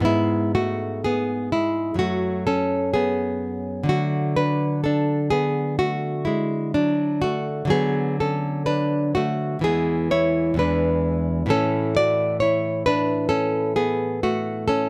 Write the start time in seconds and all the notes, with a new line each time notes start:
0.00 G#2 B3
0.05 G#3 E4
0.55 A3 F#4
1.04 B3 G#4
1.52 G#3 E4
1.94 F#2 F#3
1.99 A3 F#4
2.47 C#4 A4
2.94 B3 G#4
3.83 D3 F#3
3.89 A3 F#4
4.36 D4 B4
4.84 D4 A4
5.30 B3 G#4
5.79 A3 F#4
6.25 G#3 E4
6.74 F#3 D4
7.22 A3 F#4
7.65 D3 F#3
7.70 B3 G#4
8.20 C#4 A4
8.66 D4 B4
9.15 A3 F#4
9.59 E2 E3 G#3
9.64 B3 G#4
10.11 E4 C#5
10.54 E2 E3 G#3
10.59 D4 B4
11.46 A2 E3 A3
11.50 C#4 A4
11.97 F#4 D5
12.40 E4 C#5
12.86 D4 B4
13.29 C#4 A4
13.76 B3 G#4
14.23 A3 F#4
14.68 C#4 A4